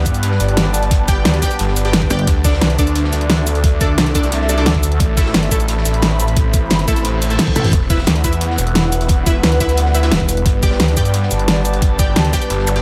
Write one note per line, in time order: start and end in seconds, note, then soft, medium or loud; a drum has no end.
0.00 2.23 G3 medium
0.00 2.23 B3 medium
0.00 4.96 D4 medium
0.00 0.64 E4 loud
0.00 2.27 G4 medium
0.00 0.64 B4 medium
0.00 2.23 B4 medium
0.00 3.37 D5 medium
0.00 0.48 F#5 medium
0.00 2.94 A5 medium
0.05 0.39 G2 loud
0.05 kick medium
0.05 closed hi-hat medium
0.05 shaker medium
0.14 closed hi-hat soft
0.14 shaker soft
0.23 closed hi-hat medium
0.31 snare soft
0.40 1.24 G1 loud
0.40 snare soft
0.40 closed hi-hat medium
0.40 shaker medium
0.48 closed hi-hat soft
0.57 snare loud
0.57 closed hi-hat loud
0.57 closed hi-hat medium
0.74 closed hi-hat medium
0.74 shaker medium
0.82 closed hi-hat soft
0.91 kick loud
0.91 closed hi-hat medium
0.91 closed hi-hat loud
1.08 1.40 G4 loud
1.08 1.40 D5 medium
1.08 1.40 G5 loud
1.08 kick loud
1.08 closed hi-hat medium
1.08 shaker medium
1.25 1.41 D2 loud
1.25 snare loud
1.25 closed hi-hat medium
1.34 closed hi-hat soft
1.42 1.57 G4 medium
1.42 1.57 D5 medium
1.42 1.57 G5 loud
1.42 kick medium
1.42 snare loud
1.42 closed hi-hat medium
1.42 shaker medium
1.51 snare soft
1.51 closed hi-hat soft
1.51 shaker soft
1.59 1.75 G1 medium
1.59 closed hi-hat medium
1.68 snare soft
1.76 2.09 G1 loud
1.76 closed hi-hat medium
1.76 shaker medium
1.85 2.08 G4 medium
1.85 2.08 D5 medium
1.85 2.08 G5 medium
1.85 snare soft
1.85 closed hi-hat soft
1.93 snare loud
1.93 closed hi-hat medium
2.02 kick medium
2.10 2.26 G1 loud
2.10 2.25 G4 loud
2.10 2.25 D5 medium
2.10 2.25 G5 loud
2.10 closed hi-hat medium
2.10 shaker medium
2.19 closed hi-hat soft
2.27 2.60 D2 loud
2.27 7.69 A3 medium
2.27 5.76 D4 medium
2.27 4.97 F#4 medium
2.27 4.97 D5 loud
2.27 kick loud
2.27 closed hi-hat medium
2.44 2.54 D4 loud
2.44 2.54 A4 medium
2.44 8.82 A4 medium
2.44 2.54 D5 loud
2.44 kick loud
2.44 closed hi-hat medium
2.44 open hi-hat medium
2.44 shaker medium
2.53 snare medium
2.61 2.77 C2 loud
2.61 8.16 E5 medium
2.61 snare loud
2.61 closed hi-hat medium
2.61 closed hi-hat loud
2.70 closed hi-hat soft
2.79 3.11 D2 loud
2.79 2.93 D4 medium
2.79 2.93 A4 medium
2.79 2.93 D5 medium
2.79 kick medium
2.79 closed hi-hat medium
2.79 shaker medium
2.87 closed hi-hat soft
2.87 shaker soft
2.95 closed hi-hat medium
3.04 snare soft
3.12 3.97 D2 loud
3.12 snare soft
3.12 closed hi-hat medium
3.12 shaker medium
3.21 closed hi-hat soft
3.30 snare loud
3.30 closed hi-hat medium
3.47 closed hi-hat medium
3.47 shaker medium
3.55 closed hi-hat soft
3.64 kick loud
3.64 closed hi-hat medium
3.81 4.13 D4 medium
3.81 4.13 A4 medium
3.81 4.13 D5 loud
3.81 kick loud
3.81 closed hi-hat medium
3.81 shaker medium
3.98 4.14 C2 loud
3.98 snare loud
3.98 closed hi-hat medium
4.06 closed hi-hat soft
4.14 4.65 C2 loud
4.14 4.30 D4 medium
4.14 4.30 A4 medium
4.14 4.30 D5 loud
4.14 kick medium
4.14 closed hi-hat medium
4.14 shaker medium
4.24 snare soft
4.24 closed hi-hat soft
4.24 shaker soft
4.32 closed hi-hat medium
4.32 closed hi-hat loud
4.41 snare soft
4.49 4.56 D4 medium
4.49 4.56 A4 medium
4.49 4.56 D5 medium
4.49 closed hi-hat medium
4.49 shaker medium
4.57 4.67 D4 medium
4.57 4.67 A4 medium
4.57 4.67 D5 loud
4.57 snare soft
4.57 closed hi-hat soft
4.66 4.99 D2 loud
4.66 snare loud
4.66 closed hi-hat medium
4.75 kick medium
4.83 closed hi-hat medium
4.83 shaker medium
4.92 closed hi-hat soft
5.00 5.33 A1 loud
5.00 7.70 C4 medium
5.00 7.70 E4 medium
5.00 7.70 C5 medium
5.00 kick loud
5.00 closed hi-hat medium
5.17 5.27 A3 medium
5.17 5.27 E4 medium
5.17 5.27 A4 loud
5.17 kick loud
5.17 closed hi-hat medium
5.17 open hi-hat medium
5.17 shaker medium
5.26 snare medium
5.34 5.50 G1 loud
5.34 snare loud
5.34 closed hi-hat medium
5.40 8.25 B5 medium
5.40 closed hi-hat soft
5.51 5.84 A1 loud
5.51 5.66 A3 medium
5.51 5.66 E4 medium
5.51 5.66 A4 medium
5.51 kick medium
5.51 closed hi-hat medium
5.51 shaker medium
5.60 closed hi-hat soft
5.60 shaker soft
5.68 closed hi-hat medium
5.78 snare soft
5.85 6.69 A1 loud
5.85 snare soft
5.85 closed hi-hat medium
5.85 shaker medium
5.94 closed hi-hat soft
6.02 snare loud
6.02 closed hi-hat medium
6.20 closed hi-hat medium
6.20 shaker medium
6.27 closed hi-hat soft
6.36 kick loud
6.36 closed hi-hat medium
6.36 closed hi-hat loud
6.54 kick loud
6.54 closed hi-hat medium
6.54 shaker medium
6.70 6.86 G1 loud
6.70 snare loud
6.70 closed hi-hat medium
6.70 closed hi-hat loud
6.79 closed hi-hat soft
6.88 7.37 A1 loud
6.88 7.03 A3 medium
6.88 7.03 E4 medium
6.88 7.03 A4 loud
6.88 kick medium
6.88 closed hi-hat medium
6.88 shaker medium
6.96 snare soft
6.96 closed hi-hat soft
6.96 shaker soft
7.05 closed hi-hat loud
7.05 closed hi-hat medium
7.05 reverse cymbal medium
7.22 closed hi-hat medium
7.22 shaker medium
7.30 7.54 A3 medium
7.30 7.54 E4 medium
7.30 7.54 A4 medium
7.30 snare soft
7.30 closed hi-hat soft
7.30 shaker soft
7.38 snare loud
7.38 closed hi-hat medium
7.38 closed hi-hat loud
7.47 kick medium
7.47 high tom medium
7.56 7.72 A1 loud
7.56 7.71 A3 loud
7.56 7.71 E4 medium
7.56 7.71 A4 loud
7.56 closed hi-hat medium
7.56 mid tom medium
7.56 shaker medium
7.64 snare loud
7.64 closed hi-hat medium
7.64 closed hi-hat soft
7.64 mid tom medium
7.73 8.06 E1 loud
7.73 12.82 G3 medium
7.73 10.43 B3 medium
7.73 10.43 E4 medium
7.73 11.02 E4 loud
7.73 12.82 B4 medium
7.73 kick loud
7.73 closed hi-hat medium
7.73 closed hi-hat loud
7.90 7.99 E4 medium
7.90 7.99 B4 medium
7.90 11.31 B4 medium
7.90 7.99 E5 loud
7.90 11.52 F#5 medium
7.90 kick loud
7.90 closed hi-hat medium
7.90 open hi-hat medium
7.90 shaker medium
7.98 snare medium
8.06 8.23 D2 loud
8.06 snare loud
8.06 closed hi-hat medium
8.06 closed hi-hat loud
8.16 closed hi-hat soft
8.24 8.57 E2 loud
8.24 8.39 E4 medium
8.24 8.39 B4 medium
8.24 8.39 E5 medium
8.24 kick medium
8.24 closed hi-hat medium
8.24 shaker medium
8.33 closed hi-hat soft
8.33 shaker soft
8.41 closed hi-hat medium
8.41 closed hi-hat loud
8.50 snare soft
8.58 9.42 E1 loud
8.58 snare soft
8.58 closed hi-hat medium
8.58 shaker medium
8.67 closed hi-hat soft
8.75 snare loud
8.75 closed hi-hat loud
8.75 closed hi-hat medium
8.92 closed hi-hat medium
8.92 shaker medium
9.01 closed hi-hat soft
9.09 kick loud
9.09 closed hi-hat medium
9.09 closed hi-hat loud
9.26 9.58 E4 medium
9.26 9.58 B4 medium
9.26 9.58 E5 loud
9.26 kick loud
9.26 closed hi-hat medium
9.26 shaker medium
9.43 9.59 D2 loud
9.43 snare loud
9.43 closed hi-hat loud
9.52 closed hi-hat soft
9.60 10.10 D2 loud
9.60 9.75 E4 medium
9.60 9.75 B4 medium
9.60 9.75 E5 loud
9.60 kick medium
9.60 closed hi-hat medium
9.60 shaker medium
9.69 snare soft
9.69 closed hi-hat soft
9.69 shaker soft
9.77 closed hi-hat medium
9.77 closed hi-hat loud
9.86 snare soft
9.94 10.01 E4 medium
9.94 10.01 B4 medium
9.94 10.01 E5 medium
9.94 closed hi-hat medium
9.94 shaker medium
10.03 10.12 E4 loud
10.03 10.12 B4 medium
10.03 10.12 E5 loud
10.03 snare soft
10.03 closed hi-hat soft
10.11 10.44 E1 loud
10.11 snare loud
10.11 closed hi-hat loud
10.11 closed hi-hat medium
10.20 kick medium
10.29 closed hi-hat medium
10.29 shaker medium
10.37 closed hi-hat soft
10.46 10.78 G1 loud
10.46 12.82 B3 medium
10.46 12.82 D4 medium
10.46 12.82 G4 medium
10.46 kick loud
10.46 closed hi-hat medium
10.52 12.82 D5 medium
10.63 10.72 G4 medium
10.63 10.72 D5 medium
10.63 10.72 G5 loud
10.63 kick loud
10.63 closed hi-hat medium
10.63 open hi-hat medium
10.63 shaker medium
10.71 snare medium
10.80 10.95 D2 loud
10.80 snare loud
10.80 closed hi-hat loud
10.88 closed hi-hat soft
10.92 12.82 A5 medium
10.97 11.30 G2 loud
10.97 11.12 G4 medium
10.97 11.12 D5 medium
10.97 11.12 G5 medium
10.97 kick medium
10.97 closed hi-hat medium
10.97 shaker medium
11.05 closed hi-hat soft
11.05 shaker soft
11.14 closed hi-hat loud
11.14 closed hi-hat medium
11.23 snare soft
11.31 12.15 G1 loud
11.31 snare soft
11.31 closed hi-hat medium
11.31 shaker medium
11.39 closed hi-hat soft
11.48 snare loud
11.48 closed hi-hat loud
11.48 closed hi-hat medium
11.65 closed hi-hat medium
11.65 shaker medium
11.73 closed hi-hat soft
11.82 kick loud
11.82 closed hi-hat medium
11.99 12.31 G4 loud
11.99 12.31 D5 medium
11.99 12.31 G5 loud
11.99 kick loud
11.99 closed hi-hat medium
11.99 shaker medium
12.16 12.32 D2 loud
12.16 snare loud
12.16 closed hi-hat medium
12.25 closed hi-hat soft
12.33 12.48 G4 medium
12.33 12.48 D5 medium
12.33 12.48 G5 loud
12.33 kick medium
12.33 snare loud
12.33 closed hi-hat medium
12.33 shaker medium
12.41 snare soft
12.41 closed hi-hat soft
12.41 shaker soft
12.50 12.66 G1 medium
12.50 closed hi-hat medium
12.59 snare soft
12.67 12.82 G1 loud
12.67 closed hi-hat medium
12.67 zap medium
12.67 shaker medium
12.76 12.82 G4 medium
12.76 12.82 D5 medium
12.76 12.82 G5 medium
12.76 snare soft
12.76 closed hi-hat soft